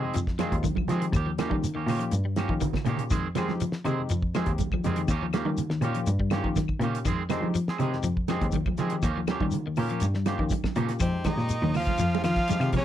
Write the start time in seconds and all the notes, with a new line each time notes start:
Already playing: G#3 C4 D#4 G4
0.03 F2 G#3 C4 G#4
0.14 F2 F3, closed hi-hat, high conga, shekere
0.27 kick, snare
0.39 F2 D#3 F3 G#3 C4 D#4 F4 G#4, snare, closed hi-hat, high conga, claves, shekere
0.52 D#2, kick, closed hi-hat
0.63 D#3, kick, closed hi-hat, high conga, shekere
0.75 F3, kick, high conga, claves
0.88 D#3 F3 G#3 C4 D#4 G4 G#4, snare, closed hi-hat, low conga, shekere
1.02 D#3, closed hi-hat
1.13 D#2 D#3 G4, muted clean electric guitar stroke, kick, closed hi-hat, high conga, claves, shekere
1.26 F3
1.38 D#3 A#3 C#4 F4 G4, snare, closed hi-hat, high conga, claves, shekere
1.50 D#3 G3, kick, high conga
1.63 closed hi-hat, high conga, low conga, shekere
1.75 D#2 D#3 A#3 C#4 G4
1.87 A#2 D#3 A#3 C#4 F4 G4, open hi-hat, low conga, claves, shekere
1.99 F3, closed hi-hat
2.11 G2, closed hi-hat, high conga, shekere
2.25 G3
2.36 A#3 C#4 F4 G4, snare, closed hi-hat, high conga, claves, shekere
2.49 D#3 F3, kick
2.61 D#3, kick, closed hi-hat, low conga, shekere
2.73 kick, snare, low conga, claves
2.85 A#2 C#3 D#3 A#3 C#4 F4 G4, closed hi-hat, low conga, shekere
2.97 closed hi-hat, low conga
3.10 F2 D#3 G#3 C4 G#4, kick, snare, closed hi-hat, high conga, claves, shekere
3.35 F2 D#3 F3 G#3 C4 D#4 G4 G#4, snare, closed hi-hat, high conga, low conga, claves, shekere
3.48 F3, snare, high conga
3.60 F3, closed hi-hat, high conga, low conga, shekere
3.72 snare
3.85 C3 D#3 G#3 C4 D#4 G4 G#4, closed hi-hat, low conga, claves, shekere
3.98 F2
4.09 F2 F3, closed hi-hat, high conga, shekere
4.22 kick
4.34 F2 D#3 F3 G#3 C4 D#4 G4 G#4, snare, closed hi-hat, high conga, claves, shekere
4.46 D#2, kick, closed hi-hat
4.58 kick, closed hi-hat, high conga, shekere
4.72 F3, kick, high conga, claves
4.84 F2 D#3 G#3 C4 D#4 G4 G#4, closed hi-hat, high conga, low conga, shekere
4.96 D#3, closed hi-hat
5.08 D#2 D#3 A#3 C#4 G4, kick, closed hi-hat, high conga, claves, shekere
5.23 F3
5.33 D#3 A#3 C#4 F4 G4, snare, closed hi-hat, high conga, claves, shekere
5.45 D#3 G3, high conga
5.57 closed hi-hat, high conga, low conga, shekere
5.70 D#2 D#3, snare
5.81 A#2 D#3 A#3 C#4 F4 G4, closed hi-hat, low conga, claves, shekere
5.95 F3, closed hi-hat
6.06 G2, closed hi-hat, high conga, shekere
6.19 G3, kick
6.30 D#3 A#3 C#4 F4 G4, muted clean electric guitar stroke, snare, closed hi-hat, high conga, claves, shekere
6.44 D#3 F3, kick
6.56 D#3, kick, snare, closed hi-hat, high conga, shekere
6.68 kick, claves
6.80 A#2 C#3 D#3 A#3 C#4 F4 G4, closed hi-hat, low conga, shekere
6.84 G4
6.95 closed hi-hat
7.05 F2 D#3 G#3 C4 G#4, kick, closed hi-hat, high conga, claves, shekere
7.29 F2 D#3 G#3 C4 D#4 G4, muted clean electric guitar stroke, snare, closed hi-hat, high conga, low conga, claves, shekere
7.41 F3, high conga
7.55 F3, closed hi-hat, high conga, shekere
7.68 G#3 C4 G#4, snare
7.78 C3 D#3 G#3 C4 D#4 G4 G#4, closed hi-hat, low conga, claves, shekere
7.93 F2, snare
8.03 F2 F3, closed hi-hat, high conga, shekere
8.17 kick
8.28 F2 D#3 F3 G#3 C4 D#4 G4 G#4, snare, closed hi-hat, high conga, claves, shekere
8.41 D#2, kick, closed hi-hat
8.52 D#3, kick, closed hi-hat, high conga, shekere
8.66 F3, kick, high conga, claves
8.78 D#3 F3 G#3 C4 D#4 G4 G#4, snare, closed hi-hat, low conga, shekere
8.90 D#3, closed hi-hat
9.02 D#2 D#3 A#3 C#4 G4, kick, closed hi-hat, high conga, claves, shekere
9.17 F3
9.27 D#3 A#3 C#4 F4 G4, snare, closed hi-hat, high conga, claves, shekere
9.40 D#3 G3, kick, high conga
9.51 closed hi-hat, high conga, low conga, shekere
9.66 D#2 D#3
9.76 A#2 D#3 A#3 C#4 F4 G4 A#4, open hi-hat, low conga, claves, shekere
9.90 F3 A#3 C#4 G4, closed hi-hat
10.00 G2, closed hi-hat, high conga, shekere
10.14 G3, snare
10.26 D#3 A#3 C#4 F4 G4, snare, closed hi-hat, high conga, claves, shekere
10.39 D#3 F3, kick
10.50 D#3, kick, closed hi-hat, high conga, shekere
10.64 kick, snare, high conga, claves
10.75 A#2 C#3 D#3 A#3 C#4 F4 G4, closed hi-hat, low conga, shekere
10.89 snare, closed hi-hat
11.00 F2 F3 G#3 C4 D#4 G4 C5, kick, snare, closed hi-hat, high conga, claves, shekere
11.04 C3
11.24 D#3 D#4, kick, snare, closed hi-hat, high conga, claves, shekere
11.31 D#5
11.38 A#2, snare
11.49 closed hi-hat, high conga, shekere
11.63 D#2 D#3, high conga
11.74 F4 F5, open hi-hat, high conga, low conga, claves, shekere
11.79 F3
11.86 kick, closed hi-hat, high conga
11.98 F2 F3, closed hi-hat, high conga, shekere
12.15 high conga
12.24 D#3 F3 F4, snare, closed hi-hat, claves, shekere
12.28 F5
12.36 kick, snare, closed hi-hat
12.48 F2 F3 G#3 C4 D#4 G4, closed hi-hat, high conga, shekere
12.60 C3 D#3 G#3 C4 D#4 G4, closed hi-hat, claves
12.73 F3 C#4 C#5, kick, closed hi-hat, low conga, shekere
12.77 C#3